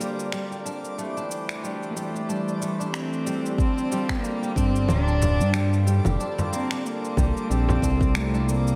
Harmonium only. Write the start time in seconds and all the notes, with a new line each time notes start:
Already playing: D3 G3 C4 F4 A#4
0.96 E3 A3 D4 G4 C5
3.57 D3 G3 C4 F4 A4
4.54 D3 G3 C4 F4
4.58 A4
6.17 D3 G3 C4 F4 A4
7.15 D3 G3 C4 F4 A4
8.14 D3 G3 C4 F4 A4